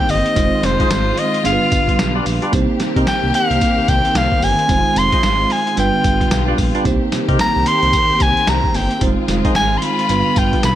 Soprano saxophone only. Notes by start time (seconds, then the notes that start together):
Already playing: G5
0.10 D#5
0.65 C5
1.19 D#5
1.46 F5
3.08 G5
3.35 F5
3.89 G5
4.17 F5
4.44 G#5
4.98 C6
5.52 G#5
5.79 G5
7.41 A#5
7.67 C6
8.22 G#5
8.49 A#5
8.76 G5
9.56 G#5
9.78 C6
9.83 B5
10.38 G5
10.65 B5